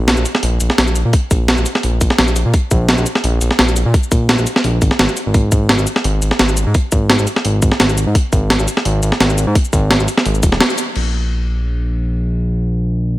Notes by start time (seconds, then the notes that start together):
Already playing: A#1
0.08 snare, closed hi-hat
0.17 A#1, shaker
0.25 closed hi-hat, shaker
0.35 snare
0.43 A#1, closed hi-hat
0.60 A#1, closed hi-hat, shaker
0.70 snare
0.78 A#1, snare, closed hi-hat
0.87 shaker
0.96 closed hi-hat, shaker
1.05 A#2
1.13 kick, closed hi-hat
1.31 A#1, kick, closed hi-hat, shaker
1.48 snare, closed hi-hat
1.58 A#1, shaker
1.66 closed hi-hat, shaker
1.75 snare
1.83 A#1, closed hi-hat
2.01 A#1, kick, closed hi-hat, shaker
2.10 snare
2.18 A#1, snare, closed hi-hat
2.28 shaker
2.36 closed hi-hat, shaker
2.45 A#2
2.54 kick, closed hi-hat
2.71 A#1, kick, closed hi-hat, shaker
2.89 snare, closed hi-hat
2.98 A#1, shaker
3.06 closed hi-hat, shaker
3.15 snare
3.24 A#1, closed hi-hat
3.41 A#1, closed hi-hat, shaker
3.51 snare
3.59 A#1, snare, closed hi-hat
3.68 shaker
3.76 closed hi-hat, shaker
3.86 A#2
3.94 kick, closed hi-hat
4.03 shaker
4.12 A#1, kick, closed hi-hat, shaker
4.29 snare, closed hi-hat
4.38 A#1, shaker
4.47 closed hi-hat, shaker
4.56 snare
4.64 A#1, closed hi-hat
4.82 G#1, kick, closed hi-hat, shaker
4.91 snare
4.99 G#1, snare, closed hi-hat
5.09 shaker
5.17 closed hi-hat, shaker
5.26 G#1
5.34 kick, closed hi-hat
5.52 G#1, kick, closed hi-hat, shaker
5.69 snare, closed hi-hat
5.79 G#1, shaker
5.87 closed hi-hat, shaker
5.96 snare
6.04 G#1, closed hi-hat
6.22 G#1, closed hi-hat, shaker
6.31 snare
6.39 G#1, snare, closed hi-hat
6.49 shaker
6.57 closed hi-hat, shaker
6.67 G#2
6.74 kick, closed hi-hat
6.92 G#1, kick, closed hi-hat, shaker
7.10 snare, closed hi-hat
7.19 G#1, shaker
7.27 closed hi-hat, shaker
7.36 snare
7.45 G#1, closed hi-hat
7.62 G#1, kick, closed hi-hat, shaker
7.72 snare
7.80 G#1, snare, closed hi-hat
7.89 shaker
7.98 closed hi-hat, shaker
8.07 G#2
8.15 kick, closed hi-hat
8.33 G#1, kick, closed hi-hat, shaker
8.50 snare, closed hi-hat
8.59 G#1, shaker
8.68 closed hi-hat, shaker
8.77 snare
8.85 G#1, closed hi-hat
9.03 G#1, closed hi-hat, shaker
9.12 snare
9.20 G#1, snare, closed hi-hat
9.30 shaker
9.38 closed hi-hat, shaker
9.47 G#2
9.55 kick, closed hi-hat
9.65 shaker
9.73 G#1, kick, closed hi-hat, shaker
9.91 snare, closed hi-hat
10.00 G#1, shaker
10.08 closed hi-hat, shaker
10.18 snare
10.26 G#1, closed hi-hat
10.35 shaker
10.43 D#1, kick, closed hi-hat, shaker
10.52 snare
10.61 snare, closed hi-hat
10.70 shaker
10.78 closed hi-hat, shaker
10.96 A#1, crash